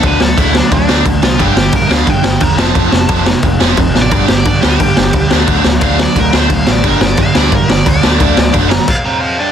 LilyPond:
<<
  \new Staff \with { instrumentName = "Overdriven electric guitar" } { \time 4/4 \key d \mixolydian \tempo 4 = 176 << { b'8 a'8 e'8 d'8 d'4 r8 f'8 | g'4 bes'8 f''8 g''4 bes''8 a''8~ | a''4. r4. \tuplet 3/2 { r4 d''8 } | \tuplet 3/2 { d''8 g'8 d''8 d''8 g'8 g'8~ } g'4. r8 |
r4 f''8 d''8 bes'8 c''8 f''8 d''8 | bes'8 d''8 f''8 d''8 bes'8 d''8 d''4~ | d''4 r8 bes''8 f''8 bes''8 f''8 g''8 | } \\ { r1 | r1 | r1 | r1 |
r1 | r1 | r2 r8 <c' c''>4 <d' d''>8 | } >> }
  \new Staff \with { instrumentName = "Overdriven electric guitar" } { \clef bass \time 4/4 \key d \mixolydian <d a d'>8 <d a>8 <d a d'>8 <d a>8 <d a>8 <d a d'>8 <d a>8 <d a>8 | <g, d g>8 <g, d>8 <g, d>8 <g, d g>8 <g, d>8 <g, d>8 <g, d>8 <f, c f>8 | <f, c f>8 <f, c>8 <f, c f>8 <f, c>8 <f, c>8 <f, c f>8 <f, c>8 <f, c>8 | <g, d g>8 <g, d>8 <g, d>8 <g, d g>8 <g, d>8 <g, d>8 <g, d>8 <d a d'>8 |
<d a d'>8 <d a>8 <d a d'>8 <d a>8 <d a>8 <d a d'>8 <d a>8 <d a>8 | <g, d g>8 <g, d>8 <g, d>8 <g, d g>8 <g, d>8 <g, d>8 <g, d>8 <d a d'>8 | <d a d'>8 <d a>8 <d a d'>8 <d a>8 r2 | }
  \new Staff \with { instrumentName = "Overdriven electric guitar" } { \clef bass \time 4/4 \key d \mixolydian <d fis a>8 <d fis>8 <d fis a>8 <d fis>8 <d fis>8 <d fis a>8 <d fis>8 <d fis>8 | <g, d g>8 <g, d>8 <g, d>8 <g, d g>8 <g, d>8 <g, d>8 <g, d>8 <f, c f>8 | <f, c f>8 <f, c>8 <f, c f>8 <f, c>8 <f, c>8 <f, c f>8 <f, c>8 <f, c>8 | <g, d g>8 <g, d>8 <g, d>8 <g, d g>8 <g, d>8 <g, d>8 <g, d>8 <d fis a>8 |
<d fis a>8 <d fis>8 <d fis a>8 <d fis>8 <d fis>8 <d fis a>8 <d fis>8 <d fis>8 | <g, d g>8 <g, d>8 <g, d>8 <g, d g>8 <g, d>8 <g, d>8 <g, d>8 <d fis a>8 | <d fis a>8 <d fis>8 <d fis a>8 <d fis>8 r2 | }
  \new Staff \with { instrumentName = "Picked electric bass" } { \clef bass \time 4/4 \key d \mixolydian d,8 d,8 d,4 d,8 d,8 d,8 c,8 | g,,8 g,,8 g,8 d,8 g,8 g,,8 e,,8 f,,8 | f,,8 f,,8 f,,4 f,,8 f,,8 f,,8 a,,8 | g,,8 g,,8 g,8 d,8 g,8 g,,8 d,8 d,8 |
d,8 d,8 d,4 d,8 d,8 d,8 a,,8 | g,,8 g,,8 g,8 d,8 g,8 g,,8 d,8 d,8 | d,8 d,8 fis,,4 r2 | }
  \new DrumStaff \with { instrumentName = "Drums" } \drummode { \time 4/4 <cymc bd>8 sn8 <cymc bd>8 sn8 <cymc bd>8 sn8 <cymc bd>8 sn8 | <cymc bd>8 sn8 <cymc bd>8 sn8 <cymc bd>8 sn8 <cymc bd>8 sn8 | <cymc bd>8 sn8 <cymc bd>8 sn8 <cymc bd>8 sn8 <cymc bd>8 sn8 | <cymc bd>8 sn8 <cymc bd>8 sn8 <cymc bd>8 sn8 <cymc bd>8 sn8 |
<cymc bd>8 sn8 <cymc bd>8 sn8 <cymc bd>8 sn8 <cymc bd>8 sn8 | <cymc bd>8 sn8 <cymc bd>8 sn8 <cymc bd>8 sn8 <cymc bd>8 sn8 | <cymc bd>8 sn8 <cymc bd>8 sn8 <cymc bd>4 r4 | }
>>